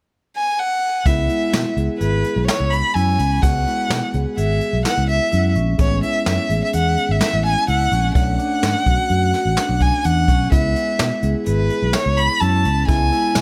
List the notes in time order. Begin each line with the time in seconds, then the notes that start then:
0.37 G#5
0.59 F#5
1.06 C#2 G#3 B3 E4 E5, kick, closed hi-hat
1.29 E4, closed hi-hat
1.53 B2, snare, closed hi-hat
1.77 C#2 G#4, closed hi-hat
1.99 G#1 G#4 B4, closed hi-hat
2.24 closed hi-hat
2.36 B1
2.48 E4 C#5, snare, closed hi-hat
2.60 C#2
2.71 B5, closed hi-hat
2.94 F#2 E4 G#5, closed hi-hat
3.19 C#2 C#4, closed hi-hat
3.42 C#2 G#3 B3 F#4 F#5, kick, closed hi-hat
3.67 E4, closed hi-hat
3.90 B2, snare, closed hi-hat
4.14 C#2 G#4, closed hi-hat
4.37 G#1 G#4 E5, closed hi-hat
4.61 closed hi-hat
4.73 B1
4.85 E4 F#5, snare, closed hi-hat
4.97 C#2
5.09 E5, closed hi-hat
5.32 F#2 E4, closed hi-hat
5.55 A#1 C#4, closed hi-hat
5.78 A1 G#3 B3 C#4 C#5, kick, closed hi-hat
6.03 E4 E5, closed hi-hat
6.26 F#2 E5, snare, closed hi-hat
6.50 A1 G#4, closed hi-hat
6.64 E5
6.73 E2 G#4 F#5, closed hi-hat
6.97 closed hi-hat
7.09 G#1 E5
7.21 E4 E5, snare, closed hi-hat
7.33 A1
7.45 G#5, closed hi-hat
7.68 C#2 E4 F#5, closed hi-hat
7.92 A#1 C#4, closed hi-hat
8.14 B1 A3 C#4 D4 F#5, kick, closed hi-hat
8.39 D4, closed hi-hat
8.63 G#2, snare, closed hi-hat
8.86 B1 F#4, kick, closed hi-hat
9.10 F#2 F#4, closed hi-hat
9.34 snare, closed hi-hat
9.45 A1
9.57 D4, snare, closed hi-hat
9.69 B1
9.80 G#5, kick, closed hi-hat
10.04 E2 D4 F#5, closed hi-hat
10.28 B1 C#4, kick, closed hi-hat
10.50 C#2 G#3 B3 E4 E5, kick, closed hi-hat
10.76 E4, closed hi-hat
10.99 B2, snare, closed hi-hat
11.23 C#2 G#4, closed hi-hat
11.46 G#1 G#4 B4, closed hi-hat
11.70 closed hi-hat
11.82 B1
11.93 E4 C#5, snare, closed hi-hat
12.06 C#2
12.18 B5, closed hi-hat
12.41 F#2 E4 A5, closed hi-hat
12.65 C#2 C#4, closed hi-hat
12.87 C#2 G#3 B3 E4 G#5, kick, closed hi-hat
13.12 E4, closed hi-hat
13.35 B2, snare, closed hi-hat